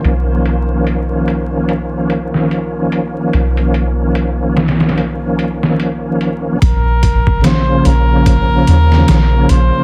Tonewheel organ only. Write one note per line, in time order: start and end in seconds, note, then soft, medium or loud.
0.01 6.56 D#3 medium
0.01 6.57 F3 medium
0.05 6.58 A#3 medium
0.05 6.59 C#4 medium
7.41 9.25 C#3 medium
7.41 9.26 F3 medium
7.46 9.27 A#3 medium
7.46 9.28 C#4 loud
9.29 9.84 C#3 medium
9.29 9.84 F3 medium
9.29 9.84 A#3 medium
9.35 9.84 C#4 medium